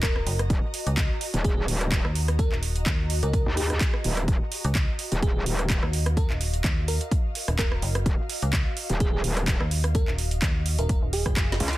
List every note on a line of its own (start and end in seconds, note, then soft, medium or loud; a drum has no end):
0.00 0.25 D#1 loud
0.00 11.78 F#4 medium
0.00 0.39 A#4 medium
0.00 11.78 D#5 medium
0.00 5.37 A#5 medium
0.00 kick loud
0.00 clap loud
0.00 closed hi-hat medium
0.16 cross-stick medium
0.26 0.48 F#1 loud
0.26 open hi-hat loud
0.39 cross-stick medium
0.39 closed hi-hat medium
0.50 0.61 D#1 loud
0.50 kick loud
0.50 closed hi-hat medium
0.74 open hi-hat loud
0.87 1.08 C#2 loud
0.87 closed hi-hat medium
0.97 kick loud
0.97 clap loud
0.97 closed hi-hat medium
1.21 open hi-hat loud
1.34 1.66 D#1 loud
1.34 closed hi-hat medium
1.44 1.53 G#4 medium
1.44 kick loud
1.44 closed hi-hat medium
1.57 1.64 G#4 medium
1.68 2.03 D#1 loud
1.68 open hi-hat loud
1.81 cross-stick medium
1.81 closed hi-hat medium
1.92 kick loud
1.92 clap loud
1.92 closed hi-hat medium
2.05 2.50 D#2 loud
2.05 cross-stick medium
2.15 open hi-hat loud
2.28 cross-stick medium
2.28 closed hi-hat medium
2.39 2.54 A#4 medium
2.39 kick loud
2.39 closed hi-hat medium
2.52 2.85 D#1 loud
2.52 clap soft
2.63 open hi-hat loud
2.76 closed hi-hat medium
2.86 3.21 D#2 loud
2.86 kick loud
2.86 clap loud
2.86 closed hi-hat medium
3.10 open hi-hat loud
3.23 3.44 C#2 loud
3.23 3.30 A#4 medium
3.23 closed hi-hat medium
3.33 3.42 A#4 medium
3.33 kick loud
3.33 closed hi-hat medium
3.46 3.79 D#2 loud
3.57 3.94 G#4 medium
3.57 open hi-hat loud
3.70 cross-stick medium
3.70 closed hi-hat medium
3.81 kick loud
3.81 clap loud
3.81 closed hi-hat medium
3.94 cross-stick medium
4.04 4.26 D#1 loud
4.04 open hi-hat loud
4.17 cross-stick medium
4.17 closed hi-hat medium
4.28 4.39 D#1 loud
4.28 kick loud
4.28 closed hi-hat medium
4.52 open hi-hat loud
4.64 4.86 C#2 loud
4.64 closed hi-hat medium
4.75 kick loud
4.75 clap loud
4.75 closed hi-hat medium
4.99 open hi-hat loud
5.12 5.45 D#1 loud
5.12 closed hi-hat medium
5.22 5.31 G#4 medium
5.22 kick loud
5.22 closed hi-hat medium
5.35 5.42 G#4 medium
5.35 11.78 F5 medium
5.46 5.81 D#1 loud
5.46 open hi-hat loud
5.59 cross-stick medium
5.59 closed hi-hat medium
5.70 kick loud
5.70 clap loud
5.70 closed hi-hat medium
5.83 6.28 D#2 loud
5.83 cross-stick medium
5.93 open hi-hat loud
6.06 cross-stick medium
6.06 closed hi-hat medium
6.17 6.32 A#4 medium
6.17 kick loud
6.17 closed hi-hat medium
6.30 6.63 D#1 loud
6.30 clap soft
6.41 open hi-hat loud
6.54 closed hi-hat medium
6.64 6.99 D#2 loud
6.64 kick loud
6.64 clap loud
6.64 closed hi-hat medium
6.88 7.03 A#4 medium
6.88 open hi-hat loud
7.01 closed hi-hat medium
7.11 kick loud
7.11 closed hi-hat medium
7.35 open hi-hat loud
7.48 7.81 D#1 loud
7.48 cross-stick medium
7.48 closed hi-hat medium
7.59 7.95 A#4 medium
7.59 kick loud
7.59 clap loud
7.59 closed hi-hat medium
7.72 cross-stick medium
7.82 8.04 F#1 loud
7.82 open hi-hat loud
7.95 cross-stick medium
7.95 closed hi-hat medium
8.06 8.17 D#1 loud
8.06 kick loud
8.06 closed hi-hat medium
8.30 open hi-hat loud
8.42 8.64 C#2 loud
8.42 closed hi-hat medium
8.53 kick loud
8.53 clap loud
8.53 closed hi-hat medium
8.77 open hi-hat loud
8.90 9.22 D#1 loud
8.90 closed hi-hat medium
9.00 9.09 G#4 medium
9.00 kick loud
9.00 closed hi-hat medium
9.13 9.20 G#4 medium
9.24 9.59 D#1 loud
9.24 open hi-hat loud
9.37 cross-stick medium
9.37 closed hi-hat medium
9.48 kick loud
9.48 clap loud
9.48 closed hi-hat medium
9.60 10.06 D#2 loud
9.60 cross-stick medium
9.71 open hi-hat loud
9.84 cross-stick medium
9.84 closed hi-hat medium
9.95 10.10 A#4 medium
9.95 kick loud
9.95 closed hi-hat medium
10.08 10.41 D#1 loud
10.08 clap soft
10.18 open hi-hat loud
10.31 closed hi-hat medium
10.42 10.77 D#2 medium
10.42 kick loud
10.42 clap loud
10.42 closed hi-hat medium
10.66 open hi-hat loud
10.79 11.00 D#1 loud
10.79 10.86 A#4 medium
10.79 closed hi-hat medium
10.89 10.98 A#4 medium
10.89 kick loud
10.89 closed hi-hat medium
11.02 11.24 D#1 loud
11.13 11.50 G#4 loud
11.13 open hi-hat loud
11.26 11.59 F#1 loud
11.26 kick medium
11.26 cross-stick medium
11.26 closed hi-hat medium
11.37 kick loud
11.37 snare medium
11.37 clap loud
11.37 closed hi-hat medium
11.52 snare medium
11.60 11.78 C#2 loud
11.60 open hi-hat loud
11.68 snare loud
11.73 closed hi-hat medium